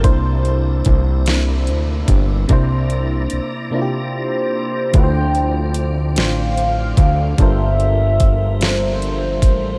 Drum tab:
HH |xxxxxx|xxx---|xxxxxx|xxxxxx|
SD |---o--|------|---o--|---o--|
BD |o-o--o|o-----|o----o|o-o--o|